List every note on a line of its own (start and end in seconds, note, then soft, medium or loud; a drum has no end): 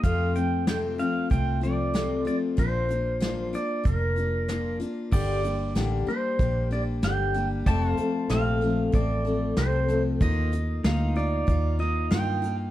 0.03 0.35 F2 medium
0.03 1.01 F2 medium
0.03 0.36 C3 medium
0.03 0.36 F3 medium
0.03 0.36 A3 medium
0.03 0.35 C4 medium
0.03 0.34 F4 medium
0.03 0.36 F5 medium
0.03 kick loud
0.03 closed hi-hat medium
0.35 0.67 F3 soft
0.35 0.68 A3 soft
0.35 0.68 C4 soft
0.35 0.67 F4 soft
0.35 0.65 G5 medium
0.35 closed hi-hat medium
0.67 0.99 F2 medium
0.67 0.99 C3 medium
0.67 0.99 F3 medium
0.67 0.99 A3 medium
0.67 0.98 C4 medium
0.67 0.97 F4 medium
0.67 0.77 G5 medium
0.67 snare loud
0.67 closed hi-hat medium
0.98 1.29 F3 soft
0.98 1.30 A3 soft
0.98 1.31 C4 medium
0.98 1.31 F4 medium
0.98 1.31 F5 medium
0.98 closed hi-hat medium
1.30 2.28 C2 medium
1.30 1.62 F3 medium
1.30 1.63 A3 medium
1.30 1.62 C4 medium
1.30 1.60 F4 medium
1.30 1.64 G5 medium
1.30 kick loud
1.30 closed hi-hat medium
1.61 1.93 F3 soft
1.61 1.94 A3 medium
1.61 1.95 C4 soft
1.61 1.94 F4 soft
1.61 2.23 D5 medium
1.61 closed hi-hat medium
1.94 2.26 F2 medium
1.94 2.26 C3 medium
1.94 2.26 F3 medium
1.94 2.26 A3 medium
1.94 2.25 C4 medium
1.94 2.24 F4 medium
1.94 snare medium
1.94 closed hi-hat medium
2.25 2.57 F3 soft
2.25 2.58 A3 medium
2.25 2.58 C4 soft
2.25 2.57 F4 medium
2.25 2.36 D5 medium
2.25 closed hi-hat medium
2.57 3.55 A#1 medium
2.57 2.89 A#2 medium
2.57 2.90 F3 medium
2.57 2.90 A#3 medium
2.57 2.89 D4 medium
2.57 2.87 F4 medium
2.57 3.57 C5 medium
2.57 kick loud
2.57 closed hi-hat medium
2.89 3.20 A#3 soft
2.89 3.21 D4 soft
2.89 3.21 F4 soft
2.89 closed hi-hat medium
3.20 3.53 A#2 medium
3.20 3.53 F3 medium
3.20 3.53 A#3 medium
3.20 3.53 D4 medium
3.20 3.52 F4 medium
3.20 snare loud
3.20 closed hi-hat medium
3.53 3.84 A#3 soft
3.53 3.85 D4 medium
3.53 3.85 F4 medium
3.53 3.87 D5 medium
3.53 closed hi-hat medium
3.84 4.82 F1 medium
3.84 4.16 F3 soft
3.84 4.17 A#3 medium
3.84 4.17 D4 medium
3.84 4.15 F4 medium
3.84 4.77 A#4 medium
3.84 kick loud
3.84 closed hi-hat medium
4.16 4.49 A#3 soft
4.16 4.49 D4 soft
4.16 4.48 F4 soft
4.16 closed hi-hat medium
4.48 4.80 A#2 medium
4.48 4.81 F3 medium
4.48 4.81 A#3 medium
4.48 4.80 D4 medium
4.48 4.79 F4 medium
4.48 snare loud
4.48 closed hi-hat medium
4.80 5.12 A#3 soft
4.80 5.12 D4 medium
4.80 5.12 F4 medium
4.80 closed hi-hat medium
5.12 5.74 G1 medium
5.12 5.44 G2 medium
5.12 5.44 D3 medium
5.12 5.44 G3 medium
5.12 5.44 A#3 medium
5.12 5.43 D4 medium
5.12 5.42 G4 medium
5.12 5.72 D5 medium
5.12 7.64 D5 medium
5.12 7.65 G5 medium
5.12 kick loud
5.12 crash loud
5.43 5.75 G3 soft
5.43 5.75 A#3 soft
5.43 5.76 D4 soft
5.43 5.75 G4 soft
5.43 closed hi-hat medium
5.75 6.05 A1 medium
5.75 6.07 G2 medium
5.75 6.07 D3 medium
5.75 6.08 G3 medium
5.75 6.08 A#3 medium
5.75 6.07 D4 medium
5.75 6.05 G4 medium
5.75 snare loud
5.75 closed hi-hat medium
6.07 6.38 G3 medium
6.07 6.39 A#3 medium
6.07 6.40 D4 medium
6.07 6.39 G4 medium
6.07 6.68 C5 medium
6.07 muted fingered electric bass stroke soft
6.39 7.01 A#1 medium
6.39 6.71 G3 medium
6.39 6.72 A#3 medium
6.39 6.71 D4 medium
6.39 6.70 G4 medium
6.39 kick loud
6.39 closed hi-hat medium
6.71 7.02 G3 soft
6.71 7.03 A#3 soft
6.71 7.03 D4 soft
6.71 7.03 G4 medium
6.71 6.81 D5 medium
7.02 7.65 G1 medium
7.02 7.34 G2 medium
7.02 7.35 D3 medium
7.02 7.35 G3 medium
7.02 7.35 A#3 medium
7.02 7.34 D4 medium
7.02 7.33 G4 medium
7.02 7.48 G5 medium
7.02 snare loud
7.02 closed hi-hat medium
7.34 7.67 G3 soft
7.34 7.67 A#3 soft
7.34 7.67 D4 medium
7.34 7.66 G4 medium
7.34 closed hi-hat soft
7.66 7.96 F1 medium
7.66 7.98 F2 medium
7.66 7.99 C3 medium
7.66 7.99 F3 medium
7.66 7.98 A3 medium
7.66 7.97 C4 medium
7.66 7.96 A4 medium
7.66 7.92 D5 medium
7.66 7.92 G5 medium
7.66 8.27 A5 loud
7.66 kick loud
7.66 closed hi-hat medium
7.92 10.18 C5 medium
7.92 10.19 F5 medium
7.97 8.30 F3 soft
7.97 8.30 A3 soft
7.97 8.30 C4 soft
7.97 8.30 A4 medium
7.97 muted fingered electric bass stroke soft
7.97 closed hi-hat medium
8.29 8.92 A#1 medium
8.29 8.62 F2 medium
8.29 8.62 C3 medium
8.29 8.62 F3 medium
8.29 8.63 A3 medium
8.29 8.61 C4 medium
8.29 8.60 A4 medium
8.29 8.96 F5 medium
8.29 snare loud
8.29 closed hi-hat medium
8.61 8.91 F3 soft
8.61 8.93 A3 soft
8.61 8.93 C4 medium
8.61 8.93 A4 medium
8.92 9.55 A1 medium
8.92 9.25 F3 medium
8.92 9.25 A3 medium
8.92 9.25 C4 medium
8.92 9.23 A4 medium
8.92 9.60 D5 medium
8.92 kick loud
8.92 closed hi-hat medium
9.25 9.56 F3 soft
9.25 9.57 A3 soft
9.25 9.57 C4 soft
9.25 9.57 A4 medium
9.56 10.19 C2 medium
9.56 9.89 F2 medium
9.56 9.89 C3 medium
9.56 9.89 F3 medium
9.56 9.89 A3 medium
9.56 9.88 C4 medium
9.56 9.87 A4 medium
9.56 10.02 C5 medium
9.56 snare loud
9.56 closed hi-hat medium
9.88 10.20 F3 soft
9.88 10.21 A3 soft
9.88 10.21 C4 medium
9.88 10.20 A4 medium
9.88 closed hi-hat medium
10.21 10.83 D#2 medium
10.21 10.52 D#3 medium
10.21 10.53 A#3 medium
10.21 10.53 D#4 medium
10.21 10.51 F4 medium
10.21 10.81 D#5 medium
10.21 kick loud
10.21 closed hi-hat medium
10.52 10.83 A#3 soft
10.52 10.84 D#4 soft
10.52 10.84 F4 soft
10.52 closed hi-hat medium
10.84 11.46 D2 medium
10.84 11.16 A#3 medium
10.84 12.71 D#4 medium
10.84 11.16 D#4 medium
10.84 11.14 F4 medium
10.84 12.71 F5 medium
10.84 snare loud
10.84 closed hi-hat medium
11.16 11.47 A#3 soft
11.16 11.48 D#4 medium
11.16 11.48 F4 medium
11.16 11.76 D5 medium
11.47 12.09 D#2 medium
11.47 11.79 D#3 medium
11.47 11.80 A#3 medium
11.47 11.80 D#4 medium
11.47 11.78 F4 medium
11.47 kick loud
11.47 closed hi-hat medium
11.79 12.10 A#3 soft
11.79 12.11 D#4 soft
11.79 12.11 F4 medium
11.79 12.09 D#5 medium
12.11 12.71 G2 medium
12.11 12.43 D#3 medium
12.11 12.43 A#3 medium
12.11 12.43 D#4 medium
12.11 12.41 F4 medium
12.11 12.55 G5 loud
12.11 snare loud
12.11 closed hi-hat medium
12.42 12.71 A#3 soft
12.42 12.71 D#4 medium
12.42 12.71 F4 medium
12.42 closed hi-hat medium